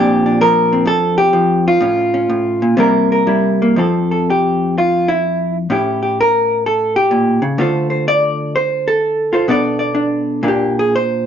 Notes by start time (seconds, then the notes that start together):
Already playing: A#2 F3 C4 D4 G4
0.26 D4
0.41 F3 A#4
0.73 C4
0.85 F2 A4
1.18 G4
1.33 F3
1.68 F4
1.80 A2 C#4
2.14 C#4
2.29 A2
2.62 A#2
2.77 C3 G3 A#3 E4 A#4
3.12 A#4
3.27 G3 E4
3.62 A#3
3.76 F2 F3 C4 A4
4.11 A4
4.30 G4
4.78 F4
5.08 E4
5.70 A2 C#4 E4 G4
6.03 G4
6.21 A#4
6.66 A4
6.96 G4
7.11 A#2
7.42 C#3
7.58 D3 A3 F4 A4 C5
7.90 C5
8.08 D5
8.56 C5
8.88 A4
9.33 F4 A4 C5
9.48 B2 B3 D4 A4 D5
9.79 D5
9.95 D4
10.43 A#2 A#3 D4
10.48 G4
10.79 G#4
10.96 C5